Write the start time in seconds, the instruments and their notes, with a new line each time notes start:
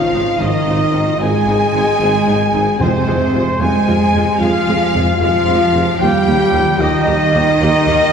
Already playing: trombone section F3, cello section F3, french horn section F4, trumpet section F5, violin section F5
0.13 double bass section G#1, tuba G#1, viola section C4 D#4
0.38 double bass section G#1, tuba G#1, cello section D#3, trombone section D#3, viola section C4 D#4, french horn section D#4, trumpet section D#5, violin section D#5
0.66 double bass section G#1, tuba G#1, viola section C4 D#4
0.93 double bass section G#1, tuba G#1, viola section C4 D#4
1.19 double bass section G#1, tuba G#1, cello section G#3, trombone section G#3, viola section C4 D#4, french horn section G#4, violin section G#5, trumpet section G#5
1.46 double bass section G#1, tuba G#1, viola section C4 D#4
1.72 tuba G#1, double bass section G#1, viola section C4 D#4
2.00 tuba G#1, double bass section G#1, viola section C4 D#4
2.26 tuba G#1, double bass section G#1, viola section C4 D#4
2.53 tuba G#1, double bass section G#1, viola section C4 D#4
2.79 tuba F1, double bass section F2, timpani F2, cello section C3, trombone section C3, viola section G#3 F4, french horn section C4, trumpet section C5, violin section C5
3.06 tuba F1, double bass section F2, viola section G#3 F4
3.32 tuba F1, double bass section F2, viola section G#3 F4
3.59 tuba F1, double bass section F2, cello section G#3, viola section G#3 F4, french horn section G#4, trumpet section G#5, violin section G#5
3.63 trombone section G#3
3.86 tuba F1, double bass section F2, viola section G#3 F4
4.13 tuba F1, double bass section F2, viola section G#3 F4
4.39 tuba F1, double bass section F2, trombone section F3, cello section F3, viola section G#3 F4, french horn section F4, trumpet section F5, violin section F5
4.66 tuba F1, double bass section F2, viola section G#3 F4
4.92 tuba F1, double bass section F2, viola section G#3 F4
5.17 tuba F1, double bass section F2, cello section F3, trombone section F3, french horn section F4, trumpet section F5, violin section F5
5.21 viola section G#3 F4, violin section F5
5.45 tuba F1, double bass section F2, viola section G#3 F4
5.73 tuba F1, double bass section F2, viola section G#3 F4
5.99 tuba D#2, double bass section D#2, cello section G3, trombone section G3, viola section A#3 G4, french horn section G4, violin section G5, trumpet section G5
6.26 tuba D#2, double bass section D#2, viola section A#3 G4
6.53 tuba D#2, double bass section D#2, viola section A#3 G4
6.79 tuba D#2, double bass section D#2, cello section D#3, trombone section D#3, viola section A#3 G4, french horn section D#4, violin section D#5, trumpet section D#5
7.06 tuba D#2, double bass section D#2, viola section A#3 G4
7.33 double bass section D#2, tuba D#2, viola section A#3 G4
7.60 tuba D#2, double bass section D#2, viola section A#3 G4
7.87 double bass section D#2, tuba D#2, viola section A#3 G4